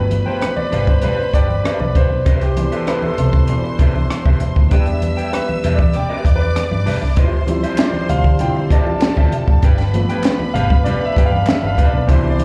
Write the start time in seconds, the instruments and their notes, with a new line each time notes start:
Already playing: fingered electric bass G1, grand piano B2 F3 A3 B4, string section B4 B5
0.11 muted clean electric guitar stroke, closed hi-hat, high conga
0.26 clean electric guitar D4 G4 B4 G5, grand piano C5
0.41 grand piano B4, muted clean electric guitar stroke, cross-stick, closed hi-hat, muted conga
0.56 grand piano D5, muted clean electric guitar stroke, high conga
0.72 fingered electric bass G1, clean electric guitar D4 G4 B4 F5, closed hi-hat, low conga
0.87 fingered electric bass G2, grand piano C5, muted clean electric guitar stroke, kick
1.02 clean electric guitar D4 G4 B4 F5, grand piano B4, closed hi-hat, low conga
1.18 grand piano C5, muted clean electric guitar stroke, muted fingered electric bass stroke
1.34 fingered electric bass G1, clean electric guitar D4 G4 B4 G5, grand piano D5, kick, closed hi-hat
1.49 muted clean electric guitar stroke, high conga
1.64 clean electric guitar D4 G4 B4 F5, muted fingered electric bass stroke, cross-stick, closed hi-hat, muted conga
1.79 fingered electric bass B1, grand piano D5, muted clean electric guitar stroke, muted conga, high conga
1.95 clean electric guitar D4 G4 B4 F5, grand piano C5, kick, closed hi-hat, low conga
2.10 fingered electric bass B1, muted clean electric guitar stroke
2.25 fingered electric bass C2, clean electric guitar D4 G4 B4 E5, string section C5 C6, kick, closed hi-hat, muted conga
2.41 grand piano G4, cross-stick, closed hi-hat
2.56 grand piano B2 E3 D4, muted clean electric guitar stroke, closed hi-hat, high conga
2.72 clean electric guitar D4 G4 B4 E5, grand piano A4, closed hi-hat
2.87 clean electric guitar D4 G4 B4 E5, grand piano B4, cross-stick, closed hi-hat
3.02 grand piano A4, high conga
3.18 fingered electric bass C2, muted clean electric guitar stroke, closed hi-hat, low conga
3.33 fingered electric bass C3, muted clean electric guitar stroke, kick
3.47 grand piano B2 E3 D4, muted clean electric guitar stroke, closed hi-hat, low conga
3.64 muted clean electric guitar stroke, muted fingered electric bass stroke, muted conga
3.79 fingered electric bass C2, clean electric guitar D4 G4 B4 E5, kick, closed hi-hat
3.96 muted clean electric guitar stroke, high conga
4.10 muted clean electric guitar stroke, muted fingered electric bass stroke, cross-stick, closed hi-hat, muted conga
4.25 fingered electric bass C2, clean electric guitar D4 G4 B4 E5, kick, muted conga, high conga
4.40 muted clean electric guitar stroke, closed hi-hat, low conga
4.56 fingered electric bass D2, muted clean electric guitar stroke, kick
4.71 fingered electric bass E2, grand piano G3 B3 D4, clean electric guitar D4 G4 B4 G5, string section E5 E6, kick, closed hi-hat
4.86 muted clean electric guitar stroke, closed hi-hat, muted conga
5.02 muted clean electric guitar stroke, closed hi-hat, high conga
5.17 clean electric guitar D4 G4 B4 G5, closed hi-hat
5.33 grand piano B4, muted clean electric guitar stroke, cross-stick, closed hi-hat, muted conga
5.48 muted clean electric guitar stroke, muted conga, high conga
5.64 fingered electric bass E2, clean electric guitar D4 G4 B4 E5, closed hi-hat, low conga
5.75 fingered electric bass E3, grand piano D5, kick
5.79 muted clean electric guitar stroke
5.93 string section D5 D6, grand piano G5, muted clean electric guitar stroke, closed hi-hat, muted conga, low conga
6.09 clean electric guitar D4 G4 B4 E5, muted fingered electric bass stroke
6.25 fingered electric bass E2, muted clean electric guitar stroke, kick, closed hi-hat
6.36 grand piano B4
6.41 muted clean electric guitar stroke, high conga
6.56 muted clean electric guitar stroke, muted fingered electric bass stroke, cross-stick, closed hi-hat, muted conga
6.71 fingered electric bass G2, muted clean electric guitar stroke, muted conga, high conga
6.86 clean electric guitar D4 G4 B4 E5, open hi-hat, low conga
7.02 fingered electric bass C2, muted clean electric guitar stroke
7.16 fingered electric bass D2, french horn section D3 F3 C4 D4 G4, clean electric guitar F4 G4 C5 E5, string section C5 C6, kick, closed hi-hat, muted conga
7.33 muted conga
7.47 grand piano F3 G3 C4 E4, muted clean electric guitar stroke, closed hi-hat, high conga
7.63 clean electric guitar F4 G4 C5 E5, closed hi-hat
7.78 clean electric guitar F4 G4 C5 E5, grand piano D5, snare, clap, closed hi-hat
7.93 high conga
8.09 fingered electric bass D2, grand piano F5, muted clean electric guitar stroke, closed hi-hat, low conga
8.24 fingered electric bass D3, muted clean electric guitar stroke, kick
8.39 grand piano F3 G3 C4 E4 G5, muted clean electric guitar stroke, closed hi-hat, muted conga, low conga
8.56 muted clean electric guitar stroke, muted conga
8.70 clean electric guitar F4 G4 C5 E5, string section A4 A5, grand piano D5, kick, closed hi-hat
8.87 muted clean electric guitar stroke, high conga
9.01 muted clean electric guitar stroke, muted fingered electric bass stroke, snare, clap, closed hi-hat
9.16 fingered electric bass D2, clean electric guitar F4 G4 C5 E5, kick, muted conga, high conga
9.32 muted clean electric guitar stroke, closed hi-hat, low conga
9.47 fingered electric bass F1, muted clean electric guitar stroke, kick
9.62 fingered electric bass G1, french horn section G3 D4 B4, clean electric guitar D4 G4 B4 G5, string section B4 B5, kick, closed hi-hat
9.78 muted clean electric guitar stroke, snare, closed hi-hat, muted conga
9.93 grand piano F3 A3 B3, muted clean electric guitar stroke, closed hi-hat, high conga
10.09 clean electric guitar D4 G4 B4 G5, closed hi-hat
10.23 muted clean electric guitar stroke, snare, clap, closed hi-hat
10.39 muted clean electric guitar stroke, high conga
10.54 fingered electric bass G1, clean electric guitar D4 G4 B4 F5, grand piano F5, closed hi-hat, low conga
10.70 fingered electric bass G2, muted clean electric guitar stroke, kick
10.84 clean electric guitar D4 G4 B4 F5, grand piano D5, closed hi-hat, low conga
11.01 muted fingered electric bass stroke, muted clean electric guitar stroke
11.05 grand piano E5
11.16 fingered electric bass G2, clean electric guitar D4 G4 B4 G5, kick, closed hi-hat
11.26 grand piano F5
11.31 muted clean electric guitar stroke, high conga
11.46 grand piano E5, muted fingered electric bass stroke, muted clean electric guitar stroke, snare, clap, closed hi-hat, muted conga
11.62 fingered electric bass G1, muted clean electric guitar stroke, muted conga, high conga
11.67 grand piano F5
11.77 clean electric guitar D4 G4 B4 F5, kick, closed hi-hat, low conga
11.87 grand piano D5
11.93 fingered electric bass B1, muted clean electric guitar stroke
12.07 fingered electric bass C2, grand piano B2 E3 D4 C5, french horn section B2 G3 E4, clean electric guitar D4 G4 B4 E5, string section C5 C6, kick, closed hi-hat, muted conga
12.24 muted conga
12.29 grand piano D5
12.39 muted clean electric guitar stroke, closed hi-hat, high conga